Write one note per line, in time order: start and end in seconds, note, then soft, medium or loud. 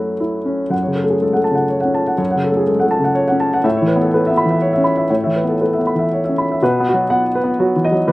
0.00 0.68 F#2 soft
0.00 0.74 A3 soft
0.00 0.12 E4 soft
0.00 0.21 F#4 medium
0.20 0.62 E4 soft
0.45 0.71 C#4 soft
0.70 2.14 F#2 soft
0.70 0.91 F#5 soft
0.83 1.03 C#5 soft
0.87 1.14 C#3 soft
0.95 1.16 A4 soft
1.04 1.31 A3 soft
1.10 1.22 G#4 soft
1.22 1.38 G#3 soft
1.22 1.41 A4 soft
1.33 1.63 A3 soft
1.33 1.53 F#5 soft
1.44 1.65 A5 soft
1.51 1.79 C#3 soft
1.51 1.76 F#5 soft
1.69 1.89 C#5 soft
1.81 2.01 F#5 soft
1.85 2.12 C#4 soft
1.94 2.14 A5 soft
2.07 2.27 F#5 soft
2.18 3.60 F#2 soft
2.18 2.38 C#5 soft
2.31 2.50 F#5 soft
2.36 2.61 C#3 soft
2.44 2.63 A4 soft
2.52 2.77 A3 soft
2.57 2.68 G#4 soft
2.67 2.84 G#3 soft
2.67 2.87 A4 soft
2.79 3.09 A3 soft
2.79 2.99 F#5 soft
2.91 3.11 A5 soft
2.99 3.25 C#3 soft
3.04 3.24 F#5 soft
3.15 3.35 C#5 soft
3.28 3.47 F#5 soft
3.32 3.58 C#4 soft
3.40 3.59 A5 soft
3.54 3.65 F#5 soft
3.64 5.05 A2 medium
3.64 3.83 E5 soft
3.77 3.96 C#5 soft
3.82 4.06 E3 soft
3.87 4.07 B4 soft
3.96 4.22 B3 soft
4.01 4.13 A4 soft
4.14 4.29 A3 soft
4.14 4.32 B4 soft
4.27 4.55 B3 soft
4.27 4.45 E5 soft
4.37 4.56 B5 soft
4.46 4.71 E3 soft
4.51 4.69 E5 soft
4.62 4.80 C#5 soft
4.73 4.92 E5 soft
4.78 5.03 C#4 soft
4.84 5.04 B5 soft
4.97 5.17 E5 soft
5.10 6.57 A2 soft
5.10 5.30 C#5 soft
5.24 5.53 E3 soft
5.24 5.43 E5 soft
5.36 5.55 B4 soft
5.44 5.70 B3 soft
5.48 5.60 A4 soft
5.61 5.77 A3 soft
5.61 5.80 B4 soft
5.73 5.93 E5 soft
5.79 6.04 B3 soft
5.87 6.06 B5 soft
5.95 6.21 E3 soft
5.95 6.18 E5 soft
6.13 6.32 C#5 soft
6.25 6.44 E5 soft
6.29 6.55 C#4 soft
6.38 6.57 B5 soft
6.52 6.62 E5 soft
6.62 8.05 B2 medium
6.62 7.02 B4 medium
6.80 7.05 B3 medium
6.88 7.27 F#4 medium
6.94 7.20 F#3 soft
7.10 7.36 B3 soft
7.10 7.50 F#5 medium
7.35 7.74 B4 medium
7.44 7.69 B3 soft
7.59 7.85 F#3 soft
7.59 7.98 F#4 medium
7.76 7.92 E3 soft
7.84 8.08 D#5 medium
7.92 8.08 F#3 soft
8.08 8.12 E2 medium
8.08 8.12 B4 medium